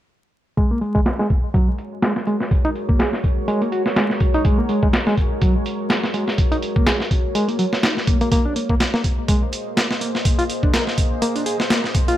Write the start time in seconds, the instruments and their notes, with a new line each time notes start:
0.57 ambient pad G#3 F#4 A#4 C#5, reed electric piano G#3, kick, closed hi-hat
0.71 reed electric piano A#3
0.81 reed electric piano G#3, closed hi-hat
0.95 reed electric piano G#3, kick
1.06 snare, closed hi-hat
1.19 reed electric piano G#3, snare
1.30 kick, closed hi-hat
1.54 reed electric piano F#3, kick, closed hi-hat
1.78 closed hi-hat
2.02 reed electric piano G#3, snare, closed hi-hat
2.16 snare
2.27 reed electric piano G#3, closed hi-hat
2.40 snare
2.51 kick, closed hi-hat
2.65 reed electric piano D#4, closed hi-hat
2.76 closed hi-hat
2.89 reed electric piano A#3, kick
2.99 reed electric piano G#4, snare, closed hi-hat
3.13 snare
3.24 kick, closed hi-hat
3.48 reed electric piano G#3, closed hi-hat
3.61 reed electric piano A#3, closed hi-hat
3.72 reed electric piano F#4, closed hi-hat
3.86 snare
3.96 reed electric piano G#3, snare, closed hi-hat
4.10 snare
4.20 kick, closed hi-hat
4.34 reed electric piano D#4, closed hi-hat
4.45 reed electric piano G#3, kick, closed hi-hat
4.59 reed electric piano A#3
4.69 reed electric piano G#3, closed hi-hat
4.83 reed electric piano G#3, kick
4.93 snare, closed hi-hat
5.07 reed electric piano G#3, snare
5.17 kick, closed hi-hat
5.41 reed electric piano F#3, kick, closed hi-hat
5.66 closed hi-hat
5.90 reed electric piano G#3, snare, closed hi-hat
6.04 snare
6.14 reed electric piano G#3, closed hi-hat
6.28 snare
6.38 kick, closed hi-hat
6.52 reed electric piano D#4, closed hi-hat
6.62 closed hi-hat
6.76 reed electric piano A#3, kick
6.87 reed electric piano G#4, snare, closed hi-hat
7.00 snare
7.11 kick, closed hi-hat
7.35 reed electric piano G#3, closed hi-hat
7.48 reed electric piano A#3, closed hi-hat
7.59 reed electric piano F#3, closed hi-hat
7.73 snare
7.83 reed electric piano D#4, snare, closed hi-hat
7.97 snare
8.07 reed electric piano A#3, ambient pad A#3 G#4 C5 D#5, kick, closed hi-hat
8.21 reed electric piano A#3, closed hi-hat
8.32 reed electric piano A#3, kick, closed hi-hat
8.45 reed electric piano D4
8.56 reed electric piano A#3, closed hi-hat
8.69 reed electric piano A#3, kick
8.80 snare, closed hi-hat
8.94 reed electric piano A#3, snare
9.04 kick, closed hi-hat
9.28 reed electric piano G#3, kick, closed hi-hat
9.53 closed hi-hat
9.77 reed electric piano A#3, snare, closed hi-hat
9.91 snare
10.01 reed electric piano A#3, closed hi-hat
10.15 snare
10.25 kick, closed hi-hat
10.39 reed electric piano F4, closed hi-hat
10.50 closed hi-hat
10.63 reed electric piano D4, kick
10.74 reed electric piano A#4, snare, closed hi-hat
10.87 snare
10.98 kick, closed hi-hat
11.22 reed electric piano A#3, closed hi-hat
11.36 reed electric piano D4, closed hi-hat
11.46 reed electric piano G#4, closed hi-hat
11.60 snare
11.70 reed electric piano A#3, snare, closed hi-hat
11.84 snare
11.95 kick, closed hi-hat
12.08 reed electric piano F4, closed hi-hat